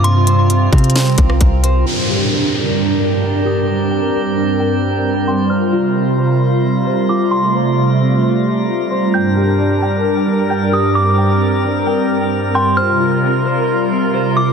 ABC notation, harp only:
X:1
M:4/4
L:1/8
Q:1/4=132
K:Gm
V:1 name="Harp"
[CFc] c2 C c3 c | g G D g2 D g G- | G g2 D g3 g | c F C c2 C c F- |
F c2 C c3 c | g G D g2 D g G- | G g2 D g3 g | c F C c2 C c F |]